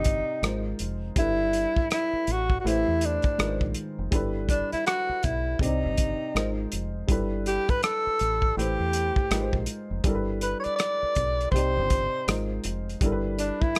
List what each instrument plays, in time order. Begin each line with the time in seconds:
Already playing: fingered electric bass G1, upright piano C3 C4 D#4 G4 D5, tenor saxophone D#4
0.04 kick, closed hi-hat
0.42 fingered electric bass G#1, upright piano G#3 D#4 F4 A#4 C5, cross-stick, closed hi-hat
0.79 fingered electric bass F1, closed hi-hat
1.16 fingered electric bass G1, upright piano G3 D4 E4 A4, tenor saxophone E4, kick, closed hi-hat
1.20 upright piano B4
1.53 closed hi-hat
1.76 muted fingered electric bass stroke, kick
1.91 tenor saxophone E4, cross-stick, closed hi-hat
2.13 muted fingered electric bass stroke
2.27 fingered electric bass A1, closed hi-hat
2.32 tenor saxophone F#4
2.50 kick
2.60 upright piano A3, tenor saxophone F#4
2.64 fingered electric bass A1, upright piano E4 G4 B4 C5, tenor saxophone E4, closed hi-hat
2.88 fingered electric bass E2
3.01 tenor saxophone D4, closed hi-hat
3.22 kick, closed hi-hat
3.38 fingered electric bass G#1, upright piano D#3 G#3 F4 A#4 B4, cross-stick, closed hi-hat
3.47 upright piano C5
3.61 fingered electric bass A#1, kick
3.74 closed hi-hat
3.99 fingered electric bass F1
4.11 fingered electric bass G1, upright piano G3 D4 E4 A4 B4, kick, closed hi-hat
4.49 tenor saxophone D4, kick, closed hi-hat
4.72 tenor saxophone E4, muted fingered electric bass stroke, closed hi-hat
4.86 tenor saxophone F#4, cross-stick, closed hi-hat
5.09 muted fingered electric bass stroke
5.23 fingered electric bass B1, tenor saxophone E4, kick, closed hi-hat
5.59 fingered electric bass C2, upright piano C3 C4 D4 G4 D5, tenor saxophone D#4, kick, closed hi-hat
5.68 upright piano D#4
5.84 fingered electric bass G1
5.97 kick, closed hi-hat
6.35 fingered electric bass G#1, upright piano G#3 D#4 F4 A#4 C5, cross-stick, closed hi-hat
6.72 fingered electric bass F1, closed hi-hat
7.07 fingered electric bass G1, upright piano G3 D4 E4 A4, kick, closed hi-hat
7.12 upright piano B4
7.46 tenor saxophone G4, closed hi-hat
7.69 tenor saxophone B4, muted fingered electric bass stroke, kick, closed hi-hat
7.83 tenor saxophone A4, cross-stick, closed hi-hat
8.07 muted fingered electric bass stroke
8.19 fingered electric bass A1, closed hi-hat
8.42 kick
8.57 fingered electric bass A1, upright piano A3 E4 G4 B4 C5, tenor saxophone G4, closed hi-hat
8.80 fingered electric bass E2
8.93 closed hi-hat
9.16 kick
9.31 fingered electric bass G#1, upright piano G#3 D#4 F4 A#4 B4, cross-stick, closed hi-hat
9.40 upright piano C5
9.53 fingered electric bass A#1, kick
9.66 closed hi-hat
9.91 fingered electric bass F1
10.04 fingered electric bass G1, upright piano G3 D4 E4 A4, kick, closed hi-hat
10.08 upright piano A#4
10.15 upright piano B4
10.41 tenor saxophone B4, closed hi-hat
10.60 tenor saxophone C#5
10.64 tenor saxophone D5, muted fingered electric bass stroke, closed hi-hat
10.76 tenor saxophone D5, cross-stick, closed hi-hat
11.03 muted fingered electric bass stroke
11.15 fingered electric bass B1, kick, closed hi-hat
11.41 closed hi-hat
11.51 fingered electric bass C2, upright piano C3 C4 D#4 G4, tenor saxophone C5, kick
11.56 upright piano D5, closed hi-hat
11.77 fingered electric bass G1
11.90 kick, closed hi-hat
12.28 fingered electric bass G#1, upright piano G#3 D#4 F4 A#4 C5, cross-stick, closed hi-hat
12.64 fingered electric bass F1, closed hi-hat
12.89 closed hi-hat
13.01 fingered electric bass G1, upright piano G3 D4 E4 A4, kick, closed hi-hat
13.05 upright piano A#4
13.12 upright piano B4
13.39 tenor saxophone D4, closed hi-hat
13.61 tenor saxophone E4, muted fingered electric bass stroke, kick
13.75 closed hi-hat